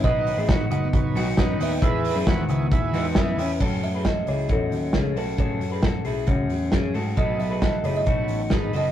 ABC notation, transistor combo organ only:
X:1
M:4/4
L:1/8
Q:1/4=134
K:F#dor
V:1 name="Transistor combo organ"
[DFBd]2 [DFBc] [DFBd] [DFBc]2 [DFBd]2 | [EGBe]2 [EGBf] [EGBd] [EGBe]2 [EGBd]2 | z8 | z8 |
[ABd]2 [ABf] [ABd] [ABc]2 [ABd]2 |]